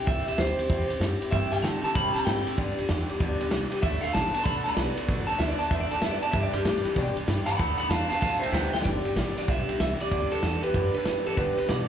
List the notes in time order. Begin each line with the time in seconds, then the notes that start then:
0.07 C2 C3 G3 C4 E4 G4 E5, kick, ride
0.26 C4 E4 G4 E5, muted upright bass stroke, ride
0.38 D2 G3 C4 E4 G4 C5, snare, ride
0.57 C4 E4 G4, snare, ride
0.69 E2 C3 G3 C4 E4 G4, kick, ride
0.88 C4 E4 G4, muted upright bass stroke, ride
1.00 F#2 G3 C4 E4 G4, snare, ride
1.20 C4 E4 G4, muted upright bass stroke, ride
1.31 G2 C3 G3 C4 E4 G4 E5, kick, ride
1.51 C3 G3 C4 E4 G4 G5, muted upright bass stroke, ride
1.62 C3 D3 G3 A3 C4 E4 G4 A5, snare, ride
1.81 C3 A3 C4 E4 G4 A5, muted upright bass stroke, ride
1.93 C3 G3 C4 E4 G4 B5, kick, ride
2.13 C3 G3 C4 E4 G4 B5, muted upright bass stroke, ride
2.24 G#2 C3 G3 A3 C4 E4 G4 G5, snare, ride
2.45 C3 A3 C4 E4 G4, muted upright bass stroke, ride
2.56 G2 D3 G3 B3 D4 G4, kick, ride
2.76 G2 D3 G3 B3 D4 G4, muted upright bass stroke, ride
2.88 E2 G2 E3 G3 B3 D4 G4, snare, ride
3.09 G2 E3 G3 B3 D4 G4, muted upright bass stroke, ride
3.20 D2 G2 D3 G3 B3 D4 G4, kick, ride
3.40 G2 D3 G3 B3 D4 G4, ride
3.51 C2 G2 E3 G3 B3 D4 G4, snare, ride
3.71 G2 E3 G3 B3 D4 G4, muted upright bass stroke, ride
3.82 D2 D3 A3 D4 F#4 A4 E5, kick, ride
4.01 D3 A3 D4 F#4 A4 F5, muted upright bass stroke, ride
4.12 A1 D3 A3 B3 D4 F#4 A4 A5, snare, ride
4.32 D3 B3 D4 F#4 A4 A5, muted upright bass stroke, snare, ride
4.44 C2 D3 A3 D4 F#4 A4 B5, kick, ride
4.64 D3 A3 D4 F#4 A4 B5, muted upright bass stroke, ride
4.75 B1 D3 A3 B3 D4 F#4 A4 D5, snare, ride
4.96 D3 B3 D4 F#4 A4, ride
5.08 A1 D3 A3 D4 F#4 A4, kick, ride
5.27 D3 A3 D4 F#4 A4 A5, muted upright bass stroke, ride
5.39 D2 D3 A3 B3 D4 F#4 A4 E5, snare, ride
5.49 D5
5.59 D3 B3 F#4 A4 A5, muted upright bass stroke, ride
5.63 D4
5.70 E2 D3 A3 D4 F#4 A4 E5, kick, ride
5.81 D5
5.90 D3 A3 D4 F#4 A4 A5, muted upright bass stroke, ride
6.01 F#2 D3 A3 B3 D4 F#4 A4 E5, snare, ride
6.11 D5
6.21 D3 B3 D4 F#4 A4 A5, muted upright bass stroke, ride
6.31 G2 D3 G3 D4 G4 B4 E5, kick, ride
6.43 D5
6.53 G2 D3 G3 D4 G4 B4, muted upright bass stroke, ride
6.64 G2 A2 E3 G3 D4 G4 B4, snare, ride
6.84 G2 E3 G3 D4 G4 B4, muted upright bass stroke, snare, ride
6.96 G2 B2 D3 G3 D4 G4 B4, kick, ride
7.16 G2 D3 G3 D4 G4 B4, muted upright bass stroke, ride
7.27 G2 E3 G3 D4 G4 B4, snare, ride
7.46 G2 E3 G4 B4 G5 B5, muted upright bass stroke, ride
7.50 G3 D4
7.57 D2 D3 A3 D4 F#4 A4 F#5 B5, kick, ride
7.78 D3 A3 F#4 A4 F#5 B5, muted upright bass stroke, ride
7.83 D4
7.89 E2 D3 A3 B3 D4 F#4 A4 F5 A5, snare, ride
8.09 D3 B3 F#4 A4 F5 A5, muted upright bass stroke, ride
8.13 D4
8.20 F#2 D3 A3 D4 F#4 A4 F5 A5, kick, ride
8.39 D3 A3 F#4 A4 C5 E5, muted upright bass stroke, ride
8.45 D4
8.52 D2 D3 A3 B3 D4 F#4 A4 C5 E5 G5, snare, ride
8.73 D3 B3 D4 F#4 A4 E5 G5, muted upright bass stroke, snare
8.82 G1 G2 D3 G3 D5, kick, snare, ride
8.86 B3 D4 G4
9.04 G2 D3 G3 B3 D4 G4, muted upright bass stroke, ride
9.15 A1 G2 E3 G3 B3 D4 G4, snare, ride
9.37 G2 E3 G3 B3 D4 G4 D5, muted upright bass stroke, snare, ride
9.48 B1 G2 D3 G3 B3 D4 G4 E5, kick, ride
9.68 G2 D3 G3 B3 D4 G4, muted upright bass stroke, ride
9.79 C2 G2 E3 G3 B3 D4 G4 E5, snare, ride
10.00 G2 E3 G3 B3 D4 G4 D5, ride
10.11 D2 G2 D3 G3 B3 D4 G4, kick, ride
10.31 G2 D3 G3 B3 D4 G4 A4, muted upright bass stroke, ride
10.42 E2 G2 E3 G3 B3 D4 G4, snare, ride
10.63 G2 E3 G3 B3 D4 G4 B4, muted upright bass stroke, ride
10.74 F#2 G2 D3 G3 B3 D4 G4, kick, ride
10.94 G2 D3 G3 B3 D4 G4 B4, muted upright bass stroke, ride
11.05 G2 E3 G3 B3 D4 G4, snare, ride
11.25 G2 E3 G3 B3 D4 G4 A4, muted upright bass stroke, ride
11.36 G2 D3 G3 B3 D4 G4 B4, kick, ride
11.56 G2 D3 G3 B3 D4 G4 B4, muted upright bass stroke, ride
11.67 G2 B2 E3 G3 B3 D4 G4 D5, snare, ride